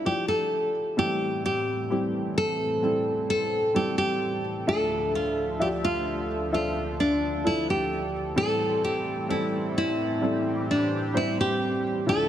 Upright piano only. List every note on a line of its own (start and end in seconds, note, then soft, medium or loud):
0.00 0.94 D2 medium
0.00 0.94 A2 medium
0.00 0.05 F3 medium
0.00 0.05 D4 medium
0.00 0.06 E4 medium
0.00 0.05 G4 medium
0.00 0.98 A4 medium
0.05 0.93 F3 medium
0.05 0.93 D4 soft
0.05 0.93 E4 soft
0.05 0.93 G4 medium
0.97 4.63 A2 soft
0.97 4.63 E3 soft
0.97 1.85 G3 medium
0.97 1.04 B3 soft
0.97 1.85 E4 medium
0.97 1.86 A4 medium
1.04 1.89 C4 soft
1.90 2.78 G3 soft
1.90 2.78 C4 medium
1.90 2.78 E4 medium
1.90 2.78 G4 medium
2.83 3.70 G3 medium
2.83 3.70 C4 medium
2.83 3.70 E4 medium
2.83 3.71 A4 medium
3.74 4.62 G3 medium
3.74 4.62 C4 soft
3.74 4.63 E4 medium
3.74 4.63 A4 medium
4.67 8.32 D2 medium
4.67 8.32 A2 medium
4.67 5.55 F3 medium
4.67 5.55 D4 medium
4.67 5.55 A4 medium
4.67 5.55 E5 medium
5.59 6.47 F3 medium
5.59 6.47 D4 medium
5.59 5.66 F4 soft
5.59 6.47 E5 medium
5.67 6.51 G4 medium
6.52 7.39 F3 medium
6.52 7.39 D4 medium
6.52 7.40 A4 medium
6.52 7.40 E5 soft
7.44 8.32 F3 medium
7.44 8.32 D4 medium
7.44 8.32 E4 medium
7.44 8.32 A4 medium
8.36 12.02 A2 medium
8.36 12.01 E3 medium
8.36 9.24 G3 medium
8.36 9.24 C4 medium
8.36 9.24 E4 medium
8.36 9.24 A4 medium
9.29 10.16 G3 medium
9.29 10.17 C4 medium
9.29 10.17 E4 medium
9.29 10.17 A4 medium
10.21 11.09 G3 medium
10.21 11.09 C4 medium
10.21 11.09 E4 medium
10.21 11.09 A4 medium
11.14 12.01 G3 medium
11.14 12.01 C4 medium
11.14 12.01 E4 medium
11.14 12.02 C5 medium
12.06 12.29 D2 medium
12.06 12.29 A2 medium
12.06 12.29 F3 medium
12.06 12.29 D4 medium
12.06 12.29 E4 medium
12.06 12.29 A4 medium